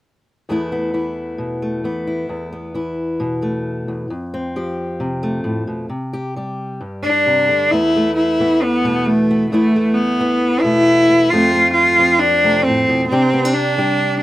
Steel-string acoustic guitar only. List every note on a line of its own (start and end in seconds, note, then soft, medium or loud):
0.49 2.28 E2 medium
0.49 0.93 E3 soft
0.49 1.62 A3 soft
0.49 0.72 B3 soft
0.49 0.94 E4 medium
0.72 1.84 B3 soft
0.94 1.83 E3 soft
0.94 2.06 E4 soft
1.38 1.83 B2 medium
1.62 2.56 A3 soft
1.84 2.26 E3 soft
1.84 2.51 B3 soft
2.07 2.74 E4 soft
2.29 3.87 E2 medium
2.53 4.10 B3 soft
2.74 4.07 E3 soft
2.74 4.10 E4 soft
3.20 4.07 B2 medium
3.42 4.07 A3 soft
3.88 4.10 E2 soft
4.10 5.88 F2 medium
4.34 5.89 C4 medium
4.56 5.88 F3 medium
4.56 5.89 G4 soft
5.00 5.44 C3 medium
5.23 5.88 A3 medium
5.44 5.67 A2 medium
5.67 5.89 B2 soft
5.90 6.81 C3 medium
6.13 6.36 G4 medium
6.36 7.72 G3 medium
6.36 7.69 G4 soft
6.81 7.68 G2 medium
7.05 7.69 D4 medium
7.26 7.49 C3 medium
7.49 7.71 D3 medium
7.72 9.51 E2 medium
7.72 7.96 A3 medium
7.72 8.41 B3 medium
7.96 8.85 A3 medium
8.40 9.50 E3 medium
8.40 9.29 B3 medium
8.84 9.49 B2 medium
8.84 9.52 A3 medium
9.31 9.52 B3 medium
9.52 11.32 E2 medium
9.52 9.76 A3 medium
9.52 10.19 B3 medium
9.52 11.33 E4 medium
9.76 10.63 A3 soft
10.20 11.29 E3 medium
10.20 11.09 B3 medium
10.64 11.29 B2 medium
10.64 11.29 A3 medium
11.10 11.32 B3 medium
11.33 13.09 F2 medium
11.33 11.53 A3 medium
11.33 11.99 C4 medium
11.54 12.43 A3 medium
11.99 13.09 F3 medium
11.99 13.09 C4 soft
12.44 12.66 C3 medium
12.44 13.09 A3 soft
12.67 12.89 A2 soft
12.89 13.11 B2 medium
13.11 14.23 C3 medium
13.11 13.33 D4 medium
13.11 13.77 G4 medium
13.33 13.45 B3 medium
13.45 14.22 D4 soft
13.78 14.23 G3 medium
13.78 14.23 G4 medium